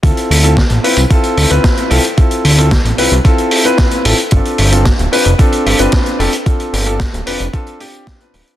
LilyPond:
<<
  \new Staff \with { instrumentName = "Grand piano" } { \time 4/4 \key d \dorian \tempo 4 = 112 <c' e' f' a'>8. <c' e' f' a'>16 r8 <c' e' f' b'>16 r16 <c' e' f' a'>8. <c' e' f' b'>8. <c' e' f' a'>16 r16 | <c' e' f' a'>8. <c' e' f' a'>16 r8 <c' e' f' b'>16 r16 <c' e' f' a'>8. <c' e' f' b'>8. <c' e' f' a'>16 r16 | <c' d' f' a'>8. <c' d' f' a'>16 r8 <c' d' f' b'>16 r16 <c' d' f' a'>8. <c' d' f' b'>8. <c' d' f' a'>16 r16 | <c' d' f' a'>8. <c' d' f' a'>16 r8 <c' d' f' b'>16 r16 <c' d' f' a'>8 <c' d' f' g'>8. <c' d' f' b'>8. | }
  \new Staff \with { instrumentName = "Analog synth bass" } { \clef bass \time 4/4 \key d \dorian d,16 r16 d,8 r16 a,,16 r16 c,16 r8 d,16 d,16 r8 c,16 r16 | r8 d,8 r16 a,,16 c,16 c,16 r4. a,,16 r16 | g,,16 r16 g,,8 r16 d,,16 r16 f,,16 r8 g,,16 g,,16 r8 f,,16 r16 | r8 g,,8 r16 d,,16 f,,16 f,,16 r4. d,,16 r16 | }
  \new DrumStaff \with { instrumentName = "Drums" } \drummode { \time 4/4 <hh bd>16 hh16 hho16 hh16 <hh bd sn>16 hh16 hho16 hh16 <hh bd>16 hh16 hho16 hh16 <hh bd sn>16 hh16 hho16 hh16 | <hh bd>16 hh16 hho16 hh16 <hh bd sn>16 hh16 hho16 hh16 <hh bd>16 hh16 hho16 hh16 <hh bd sn>16 hh16 hho16 hh16 | <hh bd>16 hh16 hho16 hh16 <hh bd sn>16 hh16 hho16 hh16 <hh bd>16 hh16 hho16 hh16 <hh bd sn>16 hh16 hho16 hh16 | <hh bd>16 hh16 hho16 hh16 <hh bd sn>16 hh16 hho16 hh16 <hh bd>16 hh16 hho16 hh16 <hh bd sn>16 hh16 hho16 hh16 | }
>>